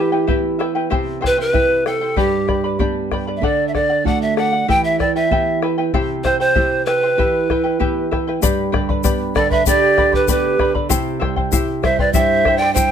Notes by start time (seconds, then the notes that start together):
Already playing: E3 E4 G4 B4 E5
0.00 G5
0.12 E4 B4 G5
0.27 B3 E4 G4 B4 E5 G5, bombo low
0.59 E4 B4 E5 G5, bombo rim
0.75 E4 B4 G5
0.90 C3 E4 G4 C5 E5 G5, bombo low
1.21 E4 C5 E5 G5, bombo rim, bombo low
1.26 B4
1.38 E4 B4 C5 G5
1.53 C4 E4 G4 E5 G5, bombo low
1.86 E4 A4 C5 E5 G5, bombo rim
2.01 E4 C5 G5
2.17 G2 G4 B4 D5 G5 B5, bombo low
2.48 B4 D5 G5 B5, bombo rim, bombo low
2.64 B4 D5 B5
2.79 G3 B3 D4 G4 B4 D5 G5 B5, bombo low
3.12 B4 D5 G5 B5, bombo rim, bombo low
3.27 B4 D5 B5
3.36 E5
3.42 D3 A4 D5 F#5, bombo low
3.68 E5
3.74 A4 D5 F#5, bombo rim, bombo low
3.90 D5 F#5
4.04 A3 D4 F#4 A4 D5 F#5, bombo low
4.22 E5
4.37 A4 D5 F#5, bombo rim
4.53 D5 F#5
4.68 E3 E4 G4 B4 E5 G5, bombo low
4.84 E5
4.99 E4 B4 D5 E5 G5, bombo rim, bombo low
5.16 E4 B4 E5 G5
5.30 B3 E4 G4 B4 E5 G5, bombo low
5.62 E4 B4 E5 G5, bombo rim
5.78 E4 B4 G5
5.94 C3 E4 G4 C5 E5 G5, bombo low
6.23 E4 C5 E5 G5, bombo rim, bombo low
6.40 E4 C5 G5
6.55 C4 E4 G4 C5 E5 G5, bombo low
6.86 E4 B4 C5 E5 G5, bombo rim
7.03 E4 C5 G5
7.18 E3 E4 G4 B4 E5 G5, bombo low
7.50 E4 B4 E5 G5, bombo rim, bombo low
7.64 E4 B4 G5
7.80 B3 E4 G4 B4 E5 G5, bombo low
8.11 E4 B4 E5 G5, bombo rim, bombo low
8.27 E4 B4 G5
8.42 G2 G4 B4 D5 G5 B5, bombo low, shaker
8.72 D3 B4 D5 G5 B5, bombo rim, bombo low
8.89 B4 D5 B5, bombo low
9.04 B3 G4 B4 D5 G5 B5, bombo low, shaker
9.35 D3 A4 B4 D5 G5 B5, bombo rim, bombo low
9.50 B4 D5 E5 B5, bombo low
9.54 B4
9.66 D3 G4 B4 D5 G5 B5, bombo low, shaker
9.98 G4 B4 D5 G5 B5, bombo rim, bombo low
10.13 G4 B4 D5 B5, bombo low
10.28 B3 G4 B4 D5 G5 B5, bombo low, shaker
10.59 D3 B4 D5 G5 B5, bombo rim, bombo low
10.75 B4 D5 B5, bombo low
10.89 C3 E4 G4 C5 E5 G5, bombo low, shaker
11.20 G3 E4 C5 E5 G5, bombo rim, bombo low
11.36 E4 C5 G5, bombo low
11.52 E4 G4 C5 E5 G5, bombo low, shaker
11.83 G3 E4 C5 E5 G5, bombo rim, bombo low
11.99 E4 B4 C5 D5 G5, bombo low
12.13 G2 E4 G4 C5 E5 G5, bombo low, shaker
12.45 G3 E4 C5 E5 G5, bombo rim, bombo low
12.58 D5 G5
12.62 E4 C5
12.74 E4 G4 C5 E5 G5, bombo low, shaker